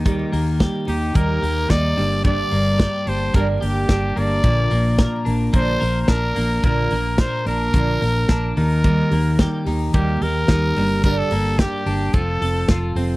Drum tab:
HH |xoxoxoxo|xoxoxoxo|xoxoxoxo|xoxoxoxo|
SD |--o---o-|--o---o-|--o---o-|--o---o-|
BD |o-o-o-o-|o-o-o-o-|o-o-o-o-|o-o-o-o-|

HH |xoxoxoxo|xoxoxoxo|
SD |--o---o-|--o---o-|
BD |o-o-o-o-|o-o-o-o-|